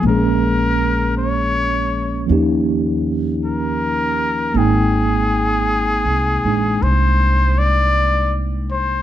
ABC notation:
X:1
M:4/4
L:1/16
Q:"Swing" 1/4=53
K:Ablyd
V:1 name="Muted trumpet"
B4 _d4 z4 B4 | A8 c2 d3 z c2 |]
V:2 name="Tine electric piano"
[F,A,B,_DA]8 [F,B,DEG]8 | [A,B,CEg]6 [A,D]8- [A,D]2 |]
V:3 name="Upright bass" clef=bass
B,,,8 E,,8 | A,,,4- (3A,,,2 C,,2 =A,,,2 C,,8 |]